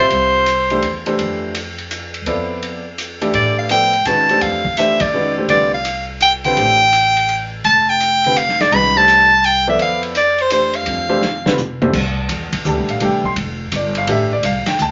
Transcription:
0.00 grand piano G3 C4 F4 C5 E5, soprano saxophone C5
0.10 upright bass C2, ride
0.46 hi-hat pedal, ride
0.70 grand piano E3 A3 D4 G4 C5, ride
0.82 upright bass E2, ride
1.06 grand piano E3 A3 D4 G4 C5, ride
1.19 upright bass F2, ride
1.55 hi-hat pedal, ride
1.78 ride
1.91 hi-hat pedal, ride
2.14 ride
2.26 upright bass F2, grand piano F3 B3 E4 A4 D5, ride
2.62 ride
2.98 hi-hat pedal, ride
3.21 grand piano E3 A3 D4 G4 D5, ride
3.33 upright bass A2, soprano saxophone D5, ride
3.59 soprano saxophone F5
3.69 grand piano F3 B3 E4 A4 D5, soprano saxophone G5, hi-hat pedal, ride
3.93 ride
4.05 upright bass C3, grand piano D#3 G#3 C#4 F#4 B4, soprano saxophone A5, hi-hat pedal, ride
4.29 grand piano E3 A3 D4 G4 C5, ride
4.41 upright bass F2, soprano saxophone F5, ride
4.65 kick
4.77 grand piano E3 A3 D4 G4 C5, soprano saxophone E5, hi-hat pedal, ride
5.00 soprano saxophone D5, kick, ride
5.13 grand piano D#3 G#3 C#4 F#4 B4
5.38 grand piano E3 A3 D4 G4 C5
5.49 upright bass C2, grand piano D3 G3 C4 F4 B4, soprano saxophone D5, ride
5.74 soprano saxophone F5
5.85 hi-hat pedal, ride
6.21 soprano saxophone G5, hi-hat pedal, ride
6.44 grand piano D3 G3 C4 F4 B4, soprano saxophone G5, ride
6.57 upright bass A1, grand piano E3 A3 D4 G4, ride
6.93 hi-hat pedal, ride
7.17 ride
7.29 ride
7.64 upright bass F1, soprano saxophone A5, ride
7.89 soprano saxophone G5
8.00 hi-hat pedal, ride
8.24 grand piano D3 G3 C4 F4 B4, ride
8.36 soprano saxophone F5, hi-hat pedal, ride
8.49 snare
8.60 soprano saxophone D5, snare, ride
8.72 upright bass C2, grand piano D#3 G#3 C#4 F#4 B4, soprano saxophone B5, ride
8.96 grand piano E3 A3 D4 G4 C5, soprano saxophone A5
9.08 hi-hat pedal, ride
9.44 soprano saxophone G5, ride
9.67 grand piano F3 B3 E4 A4 D5, soprano saxophone E5
9.79 upright bass F2, soprano saxophone F5, ride
10.03 ride
10.15 soprano saxophone D5, hi-hat pedal, ride
10.38 soprano saxophone C5, ride
10.50 grand piano E3 A3 D4 G4 C5, soprano saxophone C5, hi-hat pedal, ride
10.73 soprano saxophone F5, ride
10.86 upright bass F2, ride
11.09 grand piano E3 A3 D4 G4 C5
11.22 snare
11.45 grand piano D3 G3 C4 F4 B4, snare
11.58 hi-hat pedal, mid tom
11.82 grand piano F2 E3 A3 D4 G4 C5, mid tom
11.93 upright bass C2, kick, crash
12.29 upright bass E2, hi-hat pedal, ride
12.53 muted upright bass stroke, kick, ride
12.65 upright bass D2, grand piano E3 A3 D4 G4 A5, hi-hat pedal
12.77 upright bass C2
12.89 upright bass A1, grand piano F5, ride
13.00 upright bass C2, grand piano E3 A3 D4 G4, ride
13.05 grand piano G5
13.24 grand piano C6, kick
13.36 upright bass F1, ride
13.72 upright bass G1, hi-hat pedal, ride
13.76 grand piano D5
13.95 grand piano F5, ride
14.07 upright bass A1, grand piano E3 A3 D4 G4, ride
14.11 grand piano E5
14.33 grand piano D5
14.43 upright bass C2, grand piano F5, hi-hat pedal, ride
14.66 grand piano G5, muted upright bass stroke, snare, ride
14.78 upright bass D2, grand piano A5, hi-hat pedal

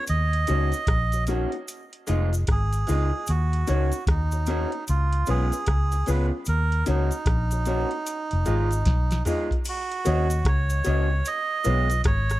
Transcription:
0.07 fingered electric bass D#2, melodica D#5, closed hi-hat, cabasa
0.33 closed hi-hat
0.47 fingered electric bass C#2, clean electric guitar A#3 C#4 F#4, upright piano D#4 F#4 C#5, closed hi-hat, cabasa
0.72 closed hi-hat, cabasa
0.87 fingered electric bass A#1, kick, cross-stick, closed hi-hat
1.12 upright piano F#4 C#5, closed hi-hat, cabasa
1.27 clean electric guitar A#3 C#4 F#4, upright piano D#4 F#4 C#5, closed hi-hat, cabasa
1.52 muted clean electric guitar stroke, closed hi-hat
1.68 closed hi-hat, cabasa
1.93 closed hi-hat
2.07 fingered electric bass F1, clean electric guitar G#3 D#4 F4, upright piano F4 G#4 D#5, closed hi-hat, cabasa
2.33 upright piano G#4 D#5, closed hi-hat, cabasa
2.47 fingered electric bass G#1, kick, cross-stick, closed hi-hat
2.52 melodica G#4
2.73 closed hi-hat, cabasa
2.87 fingered electric bass C#2, clean electric guitar G#3 D#4 F4, upright piano F4 G#4 D#5, open hi-hat, cabasa
3.13 upright piano G#4 D#5
3.27 fingered electric bass D#2, melodica F#4, closed hi-hat, cabasa
3.53 closed hi-hat
3.67 fingered electric bass C#2, clean electric guitar A#3 C#4 F#4, upright piano D#4 F#4 C#5, closed hi-hat, cabasa
3.92 closed hi-hat, cabasa
4.07 fingered electric bass D#2, melodica D#4, kick, cross-stick, closed hi-hat
4.32 upright piano F#4 C#5, closed hi-hat, cabasa
4.46 clean electric guitar A#3 C#4 F#4, upright piano D#4 F#4 C#5, closed hi-hat, cabasa
4.72 muted clean electric guitar stroke, closed hi-hat
4.87 fingered electric bass C#2, melodica F4, closed hi-hat, cabasa
5.13 closed hi-hat
5.26 fingered electric bass B1, clean electric guitar G#3 B3 F4, upright piano C#4 F4 B4, melodica G#4, closed hi-hat, cabasa
5.52 upright piano F4 B4, closed hi-hat, cabasa
5.66 fingered electric bass C#2, kick, cross-stick, closed hi-hat
5.92 muted clean electric guitar stroke, closed hi-hat, cabasa
6.06 fingered electric bass C#2, clean electric guitar G#3 B3 F4, upright piano C#4 F4 B4, melodica B4, open hi-hat, cabasa
6.45 fingered electric bass D#2, melodica A#4, closed hi-hat, cabasa
6.72 closed hi-hat
6.86 fingered electric bass C#2, clean electric guitar A#3 C#4 F#4, upright piano D#4 F#4 C#5, melodica D#4, closed hi-hat, cabasa
7.11 closed hi-hat, cabasa
7.26 fingered electric bass A#1, kick, cross-stick, closed hi-hat
7.51 upright piano F#4 C#5, closed hi-hat, cabasa
7.65 clean electric guitar A#3 C#4 F#4, upright piano D#4 F#4 C#5, closed hi-hat, cabasa
7.91 muted clean electric guitar stroke, closed hi-hat
8.06 closed hi-hat, cabasa
8.31 fingered electric bass F1, closed hi-hat
8.46 fingered electric bass G#1, clean electric guitar G#3 D#4 F4, upright piano F4 G#4 D#5, closed hi-hat, cabasa
8.71 upright piano G#4 D#5, closed hi-hat, cabasa
8.85 fingered electric bass B1, kick, snare, closed hi-hat
9.11 snare, closed hi-hat, cabasa
9.25 clean electric guitar G#3 D#4 F4, upright piano F4 G#4 D#5, mid tom, open hi-hat, cabasa
9.51 closed hi-hat, floor tom
9.65 melodica F#4, closed hi-hat, crash, cabasa
9.92 closed hi-hat
10.05 fingered electric bass D#2, clean electric guitar A#3 C#4 F#4, upright piano F#4 C#5 D#5, closed hi-hat, cabasa
10.30 closed hi-hat, cabasa
10.45 fingered electric bass C#2, melodica C#5, kick, cross-stick, closed hi-hat
10.70 upright piano C#5 D#5, closed hi-hat, cabasa
10.84 fingered electric bass C#2, clean electric guitar A#3 C#4 F#4, upright piano F#4 C#5 D#5, closed hi-hat, cabasa
11.10 muted clean electric guitar stroke
11.25 melodica D#5, closed hi-hat, cabasa
11.64 fingered electric bass B1, clean electric guitar G#3 B3 F4, upright piano F4 B4 C#5, closed hi-hat, cabasa
11.90 upright piano B4 C#5, closed hi-hat, cabasa
12.04 fingered electric bass G#1, melodica C#5, kick, cross-stick, closed hi-hat
12.30 cross-stick, closed hi-hat, cabasa

